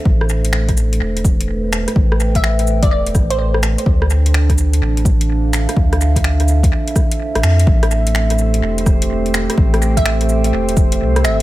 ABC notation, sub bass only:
X:1
M:4/4
L:1/16
Q:"Swing 16ths" 1/4=126
K:Am
V:1 name="Sub bass" clef=bass
A,,,8 E,,,6- E,,, z | A,,,8 E,,,2 A,,,4- A,,, z | D,,8 A,,,6- A,,, z | D,,8 z4 z A,,, F,,2 |
A,,,8 E,,,6- E,,, z | A,,,8 E,,,4 C,,2 G,,,2 |]